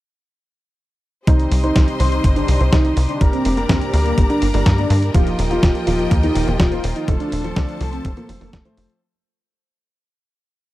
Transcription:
1.27 analog synth bass C2, grand piano C3 G3 C4 D#4 C5, analog synth lead D#4, string section G4 C5 D#5 C6, kick, closed hi-hat
1.39 closed hi-hat
1.52 analog synth bass C2, open hi-hat
1.64 grand piano C3 G3 C4 D#4 C5, analog synth lead D#4, closed hi-hat
1.76 analog synth bass C2, kick, snare, closed hi-hat
1.88 closed hi-hat
2.00 analog synth bass C2, grand piano C3 G3 C4 D#4 C5, analog synth lead D#4, open hi-hat
2.12 closed hi-hat
2.24 analog synth bass G1, kick, closed hi-hat
2.36 grand piano C3 G3 C4 D#4 C5, analog synth lead D4, closed hi-hat
2.48 analog synth bass C2, open hi-hat
2.60 analog synth bass C2, grand piano C3 G3 C4 D#4 C5, closed hi-hat
2.73 analog synth bass C2, analog synth lead D#4, kick, snare, closed hi-hat
2.85 grand piano C3 G3 C4 D#4 D#5, closed hi-hat
2.97 analog synth bass C2, open hi-hat
3.09 analog synth lead D4, closed hi-hat
3.21 analog synth bass G1, grand piano G2 G3 A#3 D4 A#4, string section A#4 D5 A#5, kick, closed hi-hat
3.33 analog synth lead C4, closed hi-hat
3.45 analog synth bass F1, open hi-hat
3.57 grand piano G2 G3 A#3 D4 A#4, closed hi-hat
3.69 analog synth bass D2, analog synth lead C4, kick, snare, closed hi-hat
3.81 closed hi-hat
3.93 analog synth bass D2, grand piano G2 G3 A#3 D4 A#4, open hi-hat
4.06 analog synth lead A#3, closed hi-hat
4.18 analog synth bass G1, kick, closed hi-hat
4.30 grand piano G2 G3 A#3 D4 A#4, analog synth lead D4, closed hi-hat
4.42 analog synth bass G1, open hi-hat
4.54 analog synth bass G1, grand piano G2 G3 A#3 D4 A#4, analog synth lead D4, open hi-hat
4.66 analog synth bass G2, kick, snare, closed hi-hat
4.78 grand piano G2 G3 A#3 D4 D5, analog synth lead D4, closed hi-hat
4.90 analog synth bass G2, open hi-hat
5.02 closed hi-hat
5.14 analog synth bass D#1, grand piano F3 A#3 D#4 G4, analog synth lead F4, string section F4 D#5 G5, kick, closed hi-hat
5.27 closed hi-hat
5.39 analog synth bass D#1, open hi-hat
5.51 grand piano F3 A#3 D#4 G4, analog synth lead F4, closed hi-hat
5.63 analog synth bass D#1, kick, snare, closed hi-hat
5.75 closed hi-hat
5.87 analog synth bass D#1, grand piano F3 A#3 D#4 G4, analog synth lead F4, open hi-hat
5.99 closed hi-hat
6.11 analog synth bass D#2, kick, closed hi-hat
6.23 grand piano F3 A#3 D#4 G4, analog synth lead D#4, closed hi-hat
6.35 analog synth bass D#1, open hi-hat
6.47 analog synth bass D#1, grand piano F3 A#3 D#4 G4, closed hi-hat
6.60 analog synth bass D#1, analog synth lead F4, kick, snare, closed hi-hat
6.72 grand piano F3 A#3 D#4 C5, closed hi-hat
6.84 analog synth bass D#1, open hi-hat
6.96 analog synth lead D#4, closed hi-hat
7.08 analog synth bass F1, grand piano F3 A3 C4 A4, string section A4 C5 A5, kick, closed hi-hat
7.20 analog synth lead D4, closed hi-hat
7.32 analog synth bass D#1, open hi-hat
7.44 grand piano F3 A3 C4 A4, closed hi-hat
7.56 analog synth bass C2, analog synth lead D4, kick, snare, closed hi-hat
7.69 closed hi-hat
7.81 analog synth bass C2, grand piano F3 A3 C4 A4, open hi-hat
7.93 analog synth lead C4, closed hi-hat
8.05 analog synth bass F1, kick, closed hi-hat
8.17 grand piano F3 A3 C4 A4, analog synth lead A#3, closed hi-hat
8.29 analog synth bass F1, grand piano F3 A3 C4 A4, open hi-hat
8.41 analog synth bass F1, grand piano F3 A3 C4 A4, analog synth lead A#3, open hi-hat
8.53 analog synth bass F1, kick, snare, closed hi-hat
8.65 grand piano F3 A3 C4 C5, analog synth lead A3, closed hi-hat
8.77 analog synth bass F1, open hi-hat
8.90 closed hi-hat

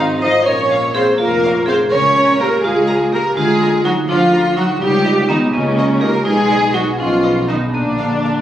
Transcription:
Already playing: double bass section G#1, harp G#2 F3 C4 F4 F5 G#5, cello section D#3, vibraphone C4, viola section D#4, violin section D#4
0.00 harp C5
0.21 cello section D#4, harp F4, vibraphone C5, violin section D#5 F5, viola section D#5
0.45 double bass section A#1, harp A#2, cello section C#4, vibraphone A#4, violin section C#5, viola section C#5
0.71 harp C#4, violin section F5
0.94 cello section C4, vibraphone G#4, harp A#4, viola section C5, violin section C5 F5
1.18 double bass section F1, cello section A#3, vibraphone F4, violin section A#4, viola section A#4, harp F5
1.44 harp C#5, violin section F5
1.66 cello section C4, vibraphone G#4, harp A#4, viola section C5, violin section C5 F5
1.91 double bass section C#2, harp C#3, cello section C#4, vibraphone A#4, violin section C#5, viola section C#5
2.17 harp A#3, violin section A#5
2.39 cello section A#3, vibraphone G4, violin section A#4 A#5, viola section A#4, harp A#4
2.64 double bass section C#2, cello section G#3, vibraphone F4, violin section G#4, viola section G#4, harp F5
2.88 harp A#4, violin section A#5
3.12 cello section A#3, harp F4, vibraphone G4, violin section A#4 A#5, viola section A#4
3.36 double bass section D2, harp D3, cello section G#3, vibraphone F4, violin section G#4, viola section G#4
3.61 harp A#3, violin section A#5
3.84 cello section F#3, vibraphone D#4, violin section F#4 A#5, viola section F#4, harp A#4
4.08 double bass section D2, cello section F3, vibraphone D4, viola section F4, violin section F4, harp F5
4.33 harp A#4, violin section A#5
4.57 cello section F#3, vibraphone D#4, harp F4, viola section F#4, violin section F#4 A#5
4.80 double bass section C#2, harp C#3, cello section G3, vibraphone D#4, viola section G4, violin section G4
5.05 harp A#3, violin section D#5
5.29 cello section D#3, vibraphone B3, violin section D#4 D#5, viola section D#4, harp A#4
5.53 double bass section C#2, cello section C#3, vibraphone A#3, violin section C#4, viola section C#4, harp D#5
5.78 harp A#4, violin section D#5
6.01 cello section A#3, harp D#4, vibraphone G4, violin section A#4 D#5, viola section A#4
6.25 double bass section B1, harp B2, cello section G#3, vibraphone D#4, violin section G#4, viola section G#4
6.50 harp B3, violin section D#5
6.74 cello section F#3, vibraphone D#4, violin section F#4 D#5, viola section F#4, harp G#4
6.99 double bass section B1, cello section F3, vibraphone C#4, violin section F4, viola section F4, harp D#5
7.23 harp B4, violin section D#5
7.48 cello section D#3, vibraphone B3, violin section D#4 D#5, viola section D#4, harp G#4
7.73 double bass section A#1, harp A#2, cello section D3, vibraphone A#3, violin section D4, viola section D4
7.98 harp A#3, violin section F5
8.23 harp A#4, violin section F5

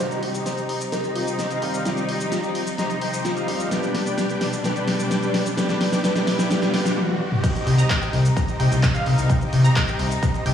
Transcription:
0.00 string section C3 G3 D#4, grand piano D#3 G3 C4 G4, supersaw synth D#4 G4 C5 D#5 G5, fm electric piano C5, riser
0.11 closed hi-hat, shaker
0.23 open hi-hat
0.34 supersaw synth D#4 G4 C5 D#5 A#5, closed hi-hat, shaker
0.46 fm electric piano C5, snare, closed hi-hat, shaker
0.57 supersaw synth D#4 G4 C5 D#5 G5, closed hi-hat, shaker
0.69 open hi-hat
0.81 shaker
0.92 supersaw synth D#4 G4 C5 D#5 A#5, fm electric piano A#4, snare, closed hi-hat, shaker
1.04 closed hi-hat, shaker
1.15 supersaw synth D#4 G4 C5 D#5 G5, fm electric piano F4, open hi-hat
1.27 closed hi-hat, shaker
1.39 snare, closed hi-hat, shaker
1.50 supersaw synth D#4 G4 C5 D#5 F5, closed hi-hat, shaker
1.61 grand piano D#3 G3 C4 G4, open hi-hat
1.74 shaker
1.84 grand piano D#3 G3 C4 G4, string section F3, supersaw synth D#4 G4 C5 D#5 G5, fm electric piano F4, snare, closed hi-hat, shaker
1.97 closed hi-hat, shaker
2.09 open hi-hat
2.20 supersaw synth D#4 G4 C5 D#5 A#5, closed hi-hat, shaker
2.32 fm electric piano F4, snare, closed hi-hat, shaker
2.43 supersaw synth D#4 G4 C5 D#5 G5, fm electric piano F4, closed hi-hat, shaker
2.55 open hi-hat
2.67 closed hi-hat, shaker
2.78 supersaw synth D#4 G4 C5 D#5 A#5, snare, closed hi-hat, shaker
2.90 closed hi-hat, shaker
3.01 supersaw synth D#4 G4 C5 D#5 G5, open hi-hat
3.13 closed hi-hat, shaker
3.25 fm electric piano F4, snare, closed hi-hat, shaker
3.37 supersaw synth D#4 G4 C5 D#5 F5, closed hi-hat, shaker
3.47 grand piano D#3 G3 C4 G4, open hi-hat
3.60 closed hi-hat, shaker
3.70 string section B2 G3 D4, grand piano D3 G3 B3 G4, supersaw synth D4 G4 B4 D5 G5, snare, closed hi-hat, shaker
3.83 closed hi-hat, shaker
3.95 snare, open hi-hat
4.06 supersaw synth D4 G4 B4 D5 G5, closed hi-hat, shaker
4.18 snare, closed hi-hat, shaker
4.29 supersaw synth D4 G4 B4 D5 G5, closed hi-hat, shaker
4.41 snare, open hi-hat
4.53 closed hi-hat, shaker
4.63 grand piano D3 G3 B3 G4, supersaw synth D4 G4 B4 D5 G5, snare, closed hi-hat, shaker
4.76 closed hi-hat, shaker
4.88 snare, open hi-hat
4.99 supersaw synth D4 G4 B4 D5 G5, shaker
5.11 snare, closed hi-hat, shaker
5.23 supersaw synth D4 G4 B4 D5 G5, closed hi-hat, shaker
5.34 snare, open hi-hat
5.46 closed hi-hat, shaker
5.56 grand piano D3 G3 B3 G4, supersaw synth D4 G4 B4 D5 G5, snare, closed hi-hat, shaker
5.69 snare, closed hi-hat, shaker
5.81 snare, open hi-hat
5.92 supersaw synth D4 G4 B4 D5 G5, snare, closed hi-hat, shaker
6.03 grand piano D3 G3 B3 G4, supersaw synth D4 G4 B4 D5 G5, snare, closed hi-hat, shaker
6.16 snare, closed hi-hat, shaker
6.27 snare, open hi-hat
6.39 supersaw synth D4 G4 B4 D5 G5, snare, closed hi-hat, shaker
6.49 grand piano D3 G3 B3 G4, supersaw synth D4 G4 B4 D5 G5, snare, closed hi-hat, shaker
6.62 snare, closed hi-hat, shaker
6.73 grand piano D3 G3 B3 G4, supersaw synth D4 G4 B4 D5 G5, snare, open hi-hat
6.85 snare, shaker
6.97 high tom
7.09 high tom
7.32 mid tom
7.43 string section C3 G3 D#4, supersaw synth D#4 G4 C5 D#5 G5, synth pluck G5, kick, closed hi-hat, crash, shaker
7.55 closed hi-hat, shaker
7.67 analog synth bass C2, open hi-hat
7.78 supersaw synth D#4 G4 C5 D#5 A#5, synth pluck A#5, closed hi-hat, shaker
7.90 kick, clap, closed hi-hat, shaker
8.02 supersaw synth D#4 G4 C5 D#5 G5, synth pluck G5, closed hi-hat, shaker
8.13 analog synth bass C2, open hi-hat
8.25 closed hi-hat, shaker
8.36 supersaw synth D#4 G4 C5 D#5 A#5, synth pluck A#5, kick, closed hi-hat, shaker
8.48 closed hi-hat, shaker
8.60 analog synth bass C2, supersaw synth D#4 G4 C5 D#5 G5, synth pluck G5, open hi-hat
8.71 analog synth bass C2, closed hi-hat, shaker
8.83 kick, clap, closed hi-hat, shaker
8.95 supersaw synth D#4 G4 C5 D#5 F5, synth pluck F5, closed hi-hat, shaker
9.06 analog synth bass C2, open hi-hat
9.18 analog synth bass C2, closed hi-hat, shaker
9.29 supersaw synth D#4 G4 C5 D#5, synth pluck G5, kick, closed hi-hat, shaker
9.41 closed hi-hat, shaker
9.53 analog synth bass C2, open hi-hat
9.64 supersaw synth D#4 G4 C5 D#5 A#5, synth pluck A#5, closed hi-hat, shaker
9.76 kick, clap, closed hi-hat, shaker
9.88 supersaw synth D#4 G4 C5 D#5 G5, synth pluck G5, closed hi-hat, shaker
9.99 analog synth bass C2, open hi-hat
10.11 closed hi-hat, shaker
10.23 supersaw synth D#4 G4 C5 D#5 A#5, synth pluck A#5, kick, closed hi-hat, shaker
10.34 closed hi-hat, shaker
10.46 analog synth bass C2, supersaw synth D#4 G4 C5 D#5 G5, synth pluck G5, open hi-hat

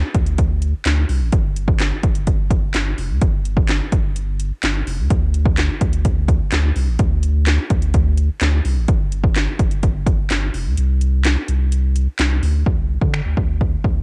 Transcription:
0.14 sub bass D2, kick, closed hi-hat
0.26 closed hi-hat
0.38 kick, closed hi-hat
0.62 closed hi-hat
0.85 sub bass D2, snare, clap, closed hi-hat
1.09 sub bass C2, open hi-hat
1.21 sub bass A1
1.32 sub bass G1, kick, closed hi-hat
1.56 closed hi-hat
1.68 kick
1.80 snare, clap, closed hi-hat
2.03 sub bass G1, kick, closed hi-hat
2.15 closed hi-hat
2.27 kick, closed hi-hat
2.51 kick, closed hi-hat
2.74 sub bass G1, snare, clap, closed hi-hat
2.98 sub bass F1, open hi-hat
3.10 sub bass D2
3.21 sub bass G1, kick, closed hi-hat
3.45 closed hi-hat
3.57 kick
3.69 snare, clap, closed hi-hat
3.92 sub bass G1, kick, closed hi-hat
4.16 closed hi-hat
4.40 closed hi-hat
4.63 sub bass G1, snare, clap, closed hi-hat
4.87 sub bass F1, open hi-hat
4.99 sub bass D2
5.10 sub bass D2, kick, closed hi-hat
5.34 closed hi-hat
5.46 kick
5.58 snare, clap, closed hi-hat
5.81 sub bass D2, kick, closed hi-hat
5.93 closed hi-hat
6.05 kick, closed hi-hat
6.28 kick, closed hi-hat
6.52 sub bass D2, snare, clap, closed hi-hat
6.76 sub bass C2, open hi-hat
6.88 sub bass A1
6.99 sub bass D2, kick, closed hi-hat
7.23 closed hi-hat
7.47 snare, clap, closed hi-hat
7.70 sub bass D2, kick, closed hi-hat
7.82 closed hi-hat
7.94 kick, closed hi-hat
8.17 closed hi-hat
8.41 sub bass D2, snare, clap, closed hi-hat
8.65 sub bass C2, open hi-hat
8.77 sub bass A1
8.88 sub bass G1, kick, closed hi-hat
9.12 closed hi-hat
9.24 kick
9.36 snare, clap, closed hi-hat
9.59 sub bass G1, kick, closed hi-hat
9.71 closed hi-hat
9.83 kick, closed hi-hat
10.06 kick, closed hi-hat
10.30 sub bass G1, snare, clap, closed hi-hat
10.54 sub bass F1, open hi-hat
10.66 sub bass D2
10.77 sub bass C2, closed hi-hat
11.01 closed hi-hat
11.25 snare, clap, closed hi-hat
11.48 sub bass C2, closed hi-hat
11.72 closed hi-hat
11.96 closed hi-hat
12.19 sub bass C2, snare, clap, closed hi-hat
12.43 sub bass D2, open hi-hat
12.66 sub bass D2, kick
12.78 sub bass C2
13.01 sub bass D3, kick
13.14 finger snap
13.25 sub bass D2
13.37 sub bass D2, kick
13.61 kick
13.84 sub bass D2, kick

